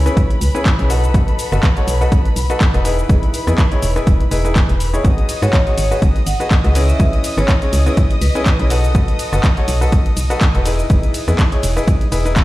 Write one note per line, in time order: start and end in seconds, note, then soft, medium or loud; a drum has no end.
0.00 0.25 B4 medium
0.00 5.06 B4 medium
0.00 5.06 B5 medium
0.06 0.31 C#4 medium
0.06 0.31 E4 medium
0.06 0.31 G#4 medium
0.06 0.31 B4 loud
0.06 cross-stick medium
0.06 closed hi-hat soft
0.06 shaker soft
0.17 0.25 B1 medium
0.17 kick loud
0.17 closed hi-hat medium
0.17 shaker soft
0.31 closed hi-hat medium
0.41 0.50 C#2 medium
0.41 open hi-hat loud
0.41 shaker medium
0.55 0.70 C#4 loud
0.55 0.70 E4 medium
0.55 0.70 G#4 medium
0.55 0.70 B4 loud
0.55 shaker soft
0.66 kick loud
0.66 clap loud
0.66 closed hi-hat medium
0.66 shaker soft
0.79 1.08 B1 loud
0.79 0.88 C#4 medium
0.79 0.88 E4 medium
0.79 0.88 G#4 medium
0.79 0.88 B4 medium
0.79 closed hi-hat medium
0.90 1.11 D#4 medium
0.90 1.11 F#4 medium
0.90 1.11 A4 medium
0.90 1.11 B4 loud
0.90 open hi-hat medium
0.90 shaker medium
1.04 closed hi-hat soft
1.04 shaker soft
1.14 1.23 B1 loud
1.14 1.49 D#4 medium
1.14 1.49 F#4 medium
1.14 1.49 A4 medium
1.14 1.49 B4 medium
1.14 kick loud
1.14 closed hi-hat medium
1.14 shaker soft
1.28 closed hi-hat medium
1.39 open hi-hat loud
1.39 shaker medium
1.52 1.59 F#1 medium
1.52 1.67 D#4 medium
1.52 1.67 F#4 medium
1.52 1.67 A4 medium
1.52 1.67 B4 loud
1.52 cross-stick medium
1.52 shaker soft
1.63 kick loud
1.63 clap loud
1.63 closed hi-hat medium
1.63 shaker soft
1.77 1.97 D#4 medium
1.77 1.97 F#4 medium
1.77 1.97 A4 medium
1.77 1.97 C#5 medium
1.77 closed hi-hat medium
1.87 2.04 B1 medium
1.87 open hi-hat loud
1.87 shaker medium
2.01 2.26 D#4 loud
2.01 2.26 F#4 medium
2.01 2.26 A4 medium
2.01 2.26 B4 loud
2.01 shaker soft
2.12 2.20 A1 medium
2.12 kick loud
2.12 closed hi-hat medium
2.12 shaker soft
2.25 closed hi-hat medium
2.36 2.45 B1 medium
2.36 open hi-hat loud
2.36 shaker medium
2.50 2.65 D#4 loud
2.50 2.65 F#4 medium
2.50 2.65 A4 medium
2.50 2.65 B4 loud
2.50 closed hi-hat soft
2.50 shaker soft
2.61 kick loud
2.61 clap loud
2.61 closed hi-hat medium
2.61 shaker soft
2.74 3.03 E1 loud
2.74 2.83 D#4 medium
2.74 2.83 F#4 medium
2.74 2.83 A4 medium
2.74 2.83 B4 medium
2.74 cross-stick medium
2.74 closed hi-hat medium
2.85 3.06 D#4 medium
2.85 3.06 E4 medium
2.85 3.06 G#4 medium
2.85 3.06 B4 medium
2.85 open hi-hat loud
2.85 shaker medium
2.99 closed hi-hat soft
2.99 shaker soft
3.09 3.18 E1 loud
3.09 3.44 D#4 medium
3.09 3.44 E4 medium
3.09 3.44 G#4 medium
3.09 3.44 B4 medium
3.09 kick loud
3.09 closed hi-hat medium
3.09 shaker soft
3.23 closed hi-hat soft
3.34 open hi-hat loud
3.34 shaker medium
3.47 3.54 E2 medium
3.47 3.62 D#4 medium
3.47 3.62 E4 medium
3.47 3.62 G#4 medium
3.47 3.62 B4 loud
3.47 cross-stick medium
3.47 shaker soft
3.58 kick loud
3.58 clap loud
3.58 closed hi-hat medium
3.58 shaker soft
3.72 3.92 D#4 medium
3.72 3.92 E4 medium
3.72 3.92 G#4 medium
3.72 3.92 C#5 medium
3.72 closed hi-hat soft
3.83 3.99 E1 medium
3.83 open hi-hat loud
3.83 shaker medium
3.96 4.22 D#4 medium
3.96 4.21 E4 medium
3.96 4.21 G#4 medium
3.96 4.21 B4 loud
3.96 cross-stick medium
3.96 closed hi-hat soft
3.96 shaker soft
4.07 4.23 E1 medium
4.07 kick loud
4.07 closed hi-hat medium
4.07 shaker soft
4.20 closed hi-hat medium
4.31 4.61 E1 medium
4.31 4.43 D#4 medium
4.31 4.43 E4 medium
4.31 4.43 G#4 medium
4.31 4.43 B4 loud
4.31 open hi-hat loud
4.31 shaker medium
4.45 4.70 D#4 medium
4.45 4.70 E4 medium
4.45 4.70 G#4 medium
4.45 4.70 B4 loud
4.45 closed hi-hat soft
4.45 shaker soft
4.56 kick loud
4.56 clap loud
4.56 closed hi-hat medium
4.56 shaker soft
4.69 4.98 E1 loud
4.69 closed hi-hat medium
4.80 open hi-hat medium
4.80 shaker medium
4.93 5.03 D#4 medium
4.93 5.03 E4 medium
4.93 5.03 G#4 medium
4.93 5.03 C#5 medium
4.93 shaker soft
5.04 5.13 G#1 loud
5.04 5.39 D#4 medium
5.04 5.39 F#4 medium
5.04 5.39 B4 medium
5.04 12.44 D#5 medium
5.04 12.44 D#6 medium
5.04 kick loud
5.04 closed hi-hat medium
5.04 shaker soft
5.18 closed hi-hat soft
5.29 open hi-hat loud
5.29 ride medium
5.29 shaker medium
5.42 5.49 G#2 medium
5.42 5.57 D#4 medium
5.42 5.58 F#4 medium
5.42 5.57 G#4 medium
5.42 5.58 B4 loud
5.42 5.49 C#5 medium
5.42 cross-stick medium
5.42 closed hi-hat soft
5.42 shaker soft
5.53 5.62 C#5 medium
5.53 kick loud
5.53 clap loud
5.53 closed hi-hat medium
5.53 shaker soft
5.67 5.87 D#4 medium
5.67 5.87 F#4 medium
5.67 5.87 G#4 medium
5.67 5.87 C#5 medium
5.67 closed hi-hat soft
5.78 5.94 G#1 medium
5.78 5.92 C#5 medium
5.78 open hi-hat loud
5.78 ride medium
5.78 shaker medium
5.91 6.17 D#4 medium
5.91 6.17 F#4 medium
5.91 6.17 G#4 medium
5.91 6.17 B4 loud
5.91 shaker soft
6.02 6.11 F#1 medium
6.02 kick loud
6.02 closed hi-hat medium
6.02 shaker soft
6.16 closed hi-hat medium
6.26 6.35 G#1 medium
6.26 6.41 F#5 medium
6.26 open hi-hat loud
6.26 ride medium
6.26 shaker medium
6.40 6.55 D#4 loud
6.40 6.55 F#4 medium
6.40 6.55 G#4 medium
6.40 6.55 B4 loud
6.40 closed hi-hat soft
6.40 shaker soft
6.51 kick loud
6.51 clap loud
6.51 closed hi-hat medium
6.51 shaker soft
6.64 6.93 C#2 loud
6.64 6.74 D#4 medium
6.64 6.74 F#4 medium
6.64 6.74 G#4 medium
6.64 6.74 B4 medium
6.64 cross-stick medium
6.64 closed hi-hat medium
6.75 6.96 C#4 medium
6.75 6.96 E4 medium
6.75 6.96 G#4 medium
6.75 6.96 B4 loud
6.75 open hi-hat medium
6.75 ride medium
6.75 shaker medium
6.89 7.01 E5 loud
6.89 closed hi-hat soft
6.89 shaker soft
7.00 7.08 C#2 loud
7.00 7.34 C#4 medium
7.00 7.34 E4 medium
7.00 7.34 G#4 medium
7.00 7.34 B4 medium
7.00 kick loud
7.00 closed hi-hat medium
7.00 shaker soft
7.13 closed hi-hat medium
7.24 open hi-hat loud
7.24 ride medium
7.24 shaker medium
7.37 7.44 G#1 medium
7.37 7.53 C#4 medium
7.37 7.53 E4 medium
7.37 7.53 G#4 medium
7.37 7.53 B4 loud
7.37 7.50 C#5 medium
7.37 cross-stick medium
7.37 shaker soft
7.48 kick loud
7.48 clap loud
7.48 closed hi-hat medium
7.48 shaker soft
7.62 7.82 C#4 medium
7.62 7.82 E4 medium
7.62 7.82 G#4 medium
7.62 7.82 C#5 medium
7.62 closed hi-hat medium
7.73 7.89 C#2 medium
7.73 open hi-hat medium
7.73 ride medium
7.73 shaker medium
7.86 8.12 C#4 medium
7.86 8.12 E4 medium
7.86 8.12 G#4 medium
7.86 8.12 B4 loud
7.86 cross-stick medium
7.86 closed hi-hat soft
7.86 shaker soft
7.97 8.06 B1 medium
7.97 kick loud
7.97 closed hi-hat medium
7.97 shaker soft
8.11 closed hi-hat medium
8.21 8.30 C#2 medium
8.21 8.60 B4 medium
8.21 open hi-hat loud
8.21 ride medium
8.21 shaker medium
8.35 8.50 C#4 loud
8.35 8.50 E4 medium
8.35 8.50 G#4 medium
8.35 8.50 B4 loud
8.35 closed hi-hat soft
8.35 shaker soft
8.46 kick loud
8.46 clap loud
8.46 closed hi-hat medium
8.46 shaker soft
8.59 8.88 B1 loud
8.59 8.69 C#4 medium
8.59 8.69 E4 medium
8.59 8.69 G#4 medium
8.59 8.69 B4 loud
8.59 closed hi-hat medium
8.70 8.92 D#4 medium
8.70 8.92 F#4 medium
8.70 8.92 A4 medium
8.70 8.92 B4 medium
8.70 open hi-hat medium
8.70 ride medium
8.70 shaker medium
8.84 closed hi-hat soft
8.84 shaker soft
8.95 9.03 B1 loud
8.95 9.29 D#4 medium
8.95 9.29 F#4 medium
8.95 9.29 A4 medium
8.95 9.29 B4 medium
8.95 kick loud
8.95 closed hi-hat medium
8.95 shaker soft
9.08 closed hi-hat medium
9.19 open hi-hat loud
9.19 ride medium
9.19 shaker medium
9.33 9.39 F#1 medium
9.33 9.48 D#4 medium
9.33 9.48 F#4 medium
9.33 9.48 A4 medium
9.33 9.48 B4 loud
9.33 cross-stick medium
9.33 closed hi-hat soft
9.33 shaker soft
9.44 kick loud
9.44 clap loud
9.44 closed hi-hat medium
9.44 shaker soft
9.57 9.77 D#4 medium
9.57 9.77 F#4 medium
9.57 9.77 A4 medium
9.57 9.77 C#5 medium
9.57 closed hi-hat medium
9.68 9.84 B1 medium
9.68 open hi-hat medium
9.68 ride medium
9.68 shaker medium
9.81 10.07 D#4 loud
9.81 10.07 F#4 medium
9.81 10.07 A4 medium
9.81 10.07 B4 loud
9.81 shaker soft
9.92 10.01 A1 medium
9.92 kick loud
9.92 closed hi-hat medium
9.92 shaker soft
10.06 closed hi-hat medium
10.17 10.25 B1 medium
10.17 open hi-hat loud
10.17 ride medium
10.17 shaker medium
10.30 10.45 D#4 loud
10.30 10.45 F#4 medium
10.30 10.45 A4 medium
10.30 10.45 B4 loud
10.30 closed hi-hat soft
10.30 shaker soft
10.41 kick loud
10.41 clap loud
10.41 closed hi-hat medium
10.41 shaker soft
10.55 10.83 E1 loud
10.55 10.64 D#4 medium
10.55 10.64 F#4 medium
10.55 10.64 A4 medium
10.55 10.64 B4 medium
10.55 cross-stick medium
10.55 closed hi-hat medium
10.65 10.87 D#4 medium
10.65 10.87 E4 medium
10.65 10.87 G#4 medium
10.65 10.87 B4 medium
10.65 open hi-hat medium
10.65 ride medium
10.65 shaker medium
10.79 closed hi-hat soft
10.79 shaker soft
10.90 10.98 E1 loud
10.90 11.25 D#4 medium
10.90 11.25 E4 medium
10.90 11.25 G#4 medium
10.90 11.25 B4 medium
10.90 kick loud
10.90 closed hi-hat medium
10.90 shaker soft
11.03 closed hi-hat medium
11.14 open hi-hat loud
11.14 ride medium
11.14 shaker medium
11.28 11.35 E2 medium
11.28 11.43 D#4 medium
11.28 11.43 E4 medium
11.28 11.43 G#4 medium
11.28 11.43 B4 loud
11.28 cross-stick medium
11.28 closed hi-hat soft
11.28 shaker soft
11.39 kick loud
11.39 clap loud
11.39 closed hi-hat medium
11.39 shaker soft
11.52 11.72 D#4 medium
11.52 11.72 E4 medium
11.52 11.72 G#4 medium
11.52 11.72 C#5 medium
11.52 closed hi-hat medium
11.63 11.79 E1 medium
11.63 open hi-hat medium
11.63 ride medium
11.63 shaker medium
11.77 12.02 D#4 loud
11.77 12.02 E4 medium
11.77 12.02 G#4 medium
11.77 12.02 B4 loud
11.77 cross-stick medium
11.77 closed hi-hat soft
11.77 shaker soft
11.88 11.96 B1 medium
11.88 kick loud
11.88 closed hi-hat medium
11.88 shaker soft
12.01 closed hi-hat medium
12.12 12.42 E1 medium
12.12 12.23 D#4 medium
12.12 12.23 E4 medium
12.12 12.23 G#4 medium
12.12 12.23 B4 loud
12.12 open hi-hat loud
12.12 ride medium
12.12 shaker medium
12.25 12.44 D#4 loud
12.25 12.44 E4 medium
12.25 12.44 G#4 medium
12.25 12.44 B4 loud
12.25 closed hi-hat soft
12.25 shaker soft
12.36 kick loud
12.36 clap loud
12.36 closed hi-hat medium
12.36 shaker soft